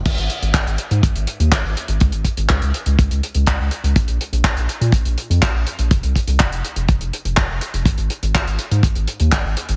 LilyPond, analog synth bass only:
\new Staff \with { instrumentName = "Analog synth bass" } { \clef bass \time 4/4 \key aes \mixolydian \tempo 4 = 123 aes,,16 aes,,16 r16 aes,,16 aes,,16 aes,,16 r16 aes,16 aes,,16 aes,,16 r16 ees,16 aes,,16 aes,,16 r16 aes,,16 | des,16 aes,,16 r16 aes,,16 des,16 des,16 r16 des,16 des,16 des,16 r16 des,16 des,16 des,16 r16 des,16 | bes,,16 bes,,16 r16 bes,,16 bes,,16 bes,,16 r16 bes,16 bes,,16 bes,,16 r16 f,16 bes,,16 bes,,16 r16 bes,,16 | f,,16 c,16 r16 c,16 f,,16 f,,16 r16 f,,16 f,,16 f,,16 r16 f,,16 f,,16 f,,16 r16 f,,16 |
aes,,16 aes,,16 r16 aes,,16 aes,,16 aes,,16 r16 aes,16 aes,,16 aes,,16 r16 ees,16 aes,,16 aes,,16 r16 aes,,16 | }